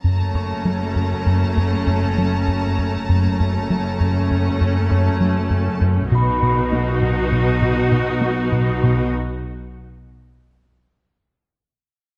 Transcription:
<<
  \new Staff \with { instrumentName = "Harp" } { \time 5/4 \key b \minor \tempo 4 = 99 r8 cis'''1~ cis'''8~ | cis'''2. <cis'' cis'''>2 | b''1~ b''4~ | b''1~ b''4 | }
  \new Staff \with { instrumentName = "Violin section" } { \time 5/4 \key b \minor << { ais''1~ ais''4~ | ais''2.~ ais''8 r4. | r1 r4 | r1 r4 | } \\ { a''1~ a''4~ | a''1~ a''8 r8 | r1 r4 | r1 r4 | } >> }
  \new Staff \with { instrumentName = "Viola section" } { \time 5/4 \key b \minor <a cis'>1~ <a cis'>4 | <a cis'>1~ <a cis'>4 | <dis' fis'>1~ <dis' fis'>4 | r1 r4 | }
  \new Staff \with { instrumentName = "Analog synth bass" } { \clef bass \time 5/4 \key b \minor fis,8 fis,8 fis8 fis,8 fis,8 fis,8 fis,8 fis8 fis,8 fis,8 | fis,8 fis,8 fis8 fis,8 fis,8 fis,8 fis,8 fis8 fis,8 fis,8 | b,8 b,8 b8 b,8 b,8 b,8 b,8 b8 b,8 b,8 | r1 r4 | }
  \new Staff \with { instrumentName = "Cello section" } { \clef bass \time 5/4 \key b \minor fis,1~ fis,4 | fis,1~ fis,4 | b,1~ b,4 | r1 r4 | }
  \new Staff \with { instrumentName = "Double bass section" } { \clef bass \time 5/4 \key b \minor fis,,1~ fis,,4 | fis,,1~ fis,,4 | b,,1~ b,,4 | r1 r4 | }
>>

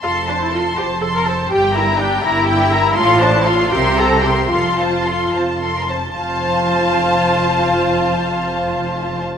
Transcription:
<<
  \new Staff \with { instrumentName = "Violin section" } { \time 6/8 \key f \major \tempo 4. = 74 c'''8 a''8 c'''8 a''8 c'''8 a''8 | g''8 bes''8 g''8 bes''8 g''8 bes''8 | c'''8 a''8 c'''8 c'''8 bes''8 c'''8 | c'''8 a''8 c'''8 a''8 c'''8 a''8 |
a''2.~ | a''2. | }
  \new Staff \with { instrumentName = "Violin section" } { \time 6/8 \key f \major <a' a''>8 <c'' c'''>8 <a' a''>8 <c'' c'''>8 <a' a''>8 <c'' c'''>8 | <g' g''>8 <bes' e''>8 <g' g''>8 <bes' e''>8 <g' g''>8 <bes' e''>8 | <a' f''>8 <c'' a''>8 <a' f''>8 <bes' e''>8 <c'' g''>8 <bes' e''>8 | <a' f''>8 <c'' a''>8 <a' f''>8 c''8 a'16 bes'16 c''8 |
<c'' f''>2.~ | <c'' f''>2. | }
  \new Staff \with { instrumentName = "Viola section" } { \time 6/8 \key f \major f'8 d'16 e'16 f'8 g'8 a'16 bes'16 a'8 | g'8 e'8 d'8 e'4. | f'8 d'16 e'16 f'8 g'8 a'8 g'8 | f'2~ f'8 r8 |
f'2.~ | f'2. | }
  \new Staff \with { instrumentName = "Cello section" } { \clef bass \time 6/8 \key f \major f,4. f,4. | g,4. g,4. | a,4. c4. | f,4. f,4. |
f,2.~ | f,2. | }
  \new Staff \with { instrumentName = "Double bass section" } { \clef bass \time 6/8 \key f \major f,,4. f,,4. | g,,4. g,,4. | a,,4. c,4. | f,,4. f,,4. |
f,,2.~ | f,,2. | }
>>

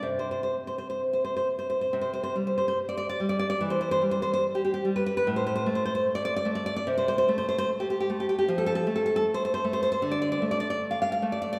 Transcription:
\new Staff \with { instrumentName = "Nylon-string guitar" } { \time 2/4 \key c \major \tempo 4 = 73 << { r32 c''32 c''32 c''32 r32 c''32 c''32 c''32 r32 c''32 c''32 c''32 r32 c''32 c''32 c''32 | r32 c''32 c''32 c''32 r32 c''32 c''32 c''32 r32 d''32 d''32 d''32 r32 d''32 d''32 d''32 | r32 c''32 c''32 c''32 r32 c''32 c''32 c''32 r32 g'32 g'32 g'32 r32 b'32 b'32 b'32 | r32 c''32 c''32 c''32 r32 c''32 c''32 c''32 r32 d''32 d''32 d''32 r32 d''32 d''32 d''32 |
r32 c''32 c''32 c''32 r32 c''32 c''32 c''32 r32 g'32 g'32 g'32 r32 g'32 g'32 g'32 | \key d \dorian r32 a'32 a'32 a'32 r32 a'32 a'32 a'32 r32 c''32 c''32 c''32 r32 c''32 c''32 c''32 | r32 d''32 d''32 d''32 r32 d''32 d''32 d''32 r32 f''32 f''32 f''32 r32 d''32 d''32 d''32 | } \\ { c2 | c8 g4 g8 | e8 g4 g8 | a,8 a4 a8 |
c8 a4 a8 | f8 a4 a8 | d8 a4 a8 | } >> }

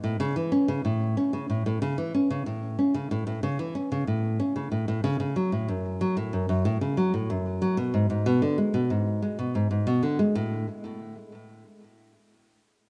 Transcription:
\new Staff \with { instrumentName = "Nylon-string guitar" } { \clef bass \time 4/4 \key a \major \tempo 4 = 93 a,16 cis16 e16 cis'16 cis16 a,8 cis'16 cis16 a,16 a,16 cis16 e16 cis'16 cis16 a,16~ | a,16 cis'16 cis16 a,16 a,16 cis16 e16 cis'16 cis16 a,8 cis'16 cis16 a,16 a,16 cis16 | cis16 fis16 a,16 fis,8 fis16 a,16 fis,16 fis,16 a,16 cis16 fis16 a,16 fis,8 fis16 | b,16 gis,16 gis,16 b,16 d16 gis16 b,16 gis,8 gis16 b,16 gis,16 gis,16 b,16 d16 gis16 |
a,8 r2. r8 | }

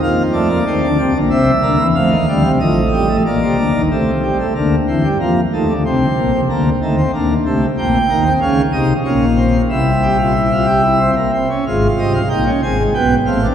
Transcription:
<<
  \new Staff \with { instrumentName = "Pipe organ" } { \time 3/4 \key c \minor \tempo 4 = 93 << { f''8 d''4. e''4 | f''4 ees''4 d''4 | r2. | r2. |
\key f \minor g''4 f''8 ees''8 f''4 | e''2~ e''8 r8 | f''8 ees''16 f''16 g''8 aes''8 g''8 f''8 | } \\ { bes8 a16 bes16 c'8 d'8 c'8 bes8 | a8 g8 f8 g16 a16 bes4 | a8 g16 a16 bes8 c'8 bes8 a8 | c'4 bes8 a16 c'16 bes8 a8 |
c'8 bes16 c'16 des'8 ees'8 des'8 c'8 | e'8 g'16 f'16 e'16 f'16 g'16 e'16 c'16 bes16 c'16 des'16 | f'4 ees'16 des'16 c'16 aes16 b8 c'16 d'16 | } >> }
  \new Staff \with { instrumentName = "Pipe organ" } { \clef bass \time 3/4 \key c \minor <f, f>4 <ees, ees>16 <d, d>16 <c, c>16 <bes,, bes,>16 <c, c>8 <d, d>16 <e, e>16 | <f, f>16 <ees, ees>16 <d, d>16 <c, c>16 <a,, a,>4 <bes,, bes,>16 <c, c>16 <d, d>16 <ees, ees>16 | <c, c>4 <d, d>8 <e, e>16 <g, g>16 <f, f>8 <ees, ees>16 <d, d>16 | <c, c>8 <bes,, bes,>16 <c, c>16 <d, d>8 <ees, ees>8 <d, d>8 <c, c>8 |
\key f \minor <bes,, bes,>8 <ees, ees>8 <des, des>8 <c, c>8 <bes,, bes,>4 | <c, c>2~ <c, c>8 r8 | <aes,, aes,>8 <c, c>8 <bes,, bes,>8 <aes,, aes,>8 <b,, b,>8 <a,, a,>8 | }
>>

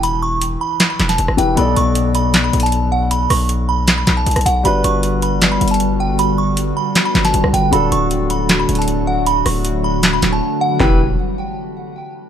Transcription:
<<
  \new Staff \with { instrumentName = "Synth bell" } { \time 4/4 \key e \dorian \tempo 4 = 156 b''8 cis'''4 b''8. b''8 a''8. g''8 | b''8 cis'''4 b''8. b''8 a''8. fis''8 | b''8 cis'''4 b''8. b''8 a''8. fis''8 | b''8 cis'''4 b''8. b''8 a''8. g''8 |
b''8 cis'''4 b''8. b''8 a''8. g''8 | b''8 cis'''4 b''8. b''8 a''8. fis''8 | b''8 cis'''4 b''8. b''8 a''8. fis''8 | g''8 r2. r8 | }
  \new Staff \with { instrumentName = "Grand piano" } { \time 4/4 \key e \dorian <e e' g' b'>2.~ <e e' g' b'>8 <e e' g' b'>8 | <b, b a' d''>1~ | <b, b a' d''>1 | <g d' fis' b'>1~ |
<g d' fis' b'>1 | <d d' fis' a'>1~ | <d d' fis' a'>1 | <e e' g' b'>8 r2. r8 | }
  \new Staff \with { instrumentName = "Ambient pad" } { \time 4/4 \key e \dorian << { r1 | r1 | r1 | <g b fis'>1~ |
<g b fis'>1 | <fis a fis'>1~ | <fis a fis'>1 | r1 | } \\ { r1 | r1 | r1 | d1~ |
d1~ | d1~ | d1 | r1 | } >> }
  \new Staff \with { instrumentName = "808-style bass" } { \clef bass \time 4/4 \key e \dorian e,,4. r4 e,,8 e,,16 g,,16 e,,8 | b,,8 b,,2 b,,4.~ | b,,8 b,,2 b,,8 b,,16 b,,16 b,,8 | g,,8 g,,2 g,,4.~ |
g,,4. r4 g,,8 g,,16 b,,16 g,,8 | d,,8 d,,2 d,,4.~ | d,,8 d,,2 d,,8 r4 | e,,4 r2. | }
  \new DrumStaff \with { instrumentName = "Drums" } \drummode { \time 4/4 hh4 hh4 <hc hh sn>8 <hc hh sn>16 <hh sn>16 hh16 ss16 hh8 | hh8 hh8 hh8 hh8 \tuplet 3/2 { <hc hh sn>16 r16 r16 hh16 hh16 hh16 } hh4 | hh8 <hho ss>8 hh4 <hc hh sn>8 <hc hh sn>8 hh32 hh32 <hh ss>32 hh32 hh8 | hh8 hh8 hh8 hh8 \tuplet 3/2 { <hc hh sn>16 r16 r16 hh16 hh16 hh16 } hh4 |
hh4 hh4 <hc hh sn>8 <hc hh sn>16 <hh sn>16 hh16 ss16 hh8 | hh8 hh8 hh8 hh8 \tuplet 3/2 { <hc hh sn>16 r16 r16 hh16 hh16 hh16 } hh4 | hh8 <hho ss>8 hh4 <hc hh sn>8 <hc hh sn>8 r4 | <hc bd>4 r4 r4 r4 | }
>>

